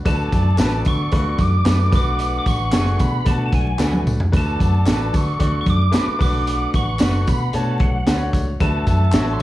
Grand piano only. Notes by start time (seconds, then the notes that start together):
0.05 A3 D4 F#4 B4
0.58 A3 D4 F#4 A#4
0.65 B4
1.12 A3 D4 F4 B4
1.19 F#4
1.65 A3 D4 F#4 B4
1.92 A3 D4 F#4 B4
2.72 A3 D4 F#4 G#4
3.25 A3 D4 F#4 D5
3.79 A3 D4 F#4 B4
4.32 A3 D4 F#4 B4
4.86 A3 D4 F#4 A#4
4.93 B4
5.39 A3 D4 F#4 D5
5.92 A3 D4 F#4 B4
6.19 A3 C#4 F#4 B4
6.25 D4
7.00 A3 D4 F#4 D5
7.54 A3 D4 F#4 C#5
8.07 A3 D4 F#4 C5
8.14 C#5
8.61 A3 D4 F#4 B4
9.13 A3 D4 F#4 C#5